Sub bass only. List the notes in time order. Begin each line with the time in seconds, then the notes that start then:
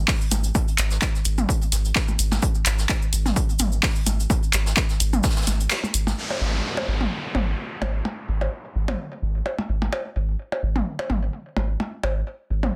0.31 G#1
0.78 G#1
1.25 G#1
1.72 G#1
2.19 G#1
2.66 G#1
3.13 G#1
3.60 G#1
4.06 G#1
4.53 G#1
5.00 G#1
5.47 G#1
5.94 G#1
6.41 G#1
6.88 G#1
7.35 G#1
7.82 G#1
8.28 G#1
8.75 G#1
9.22 G#1
9.69 G#1
10.16 G#1
10.63 G#1
11.10 G#1
11.57 G#1
12.03 G#1
12.50 G#1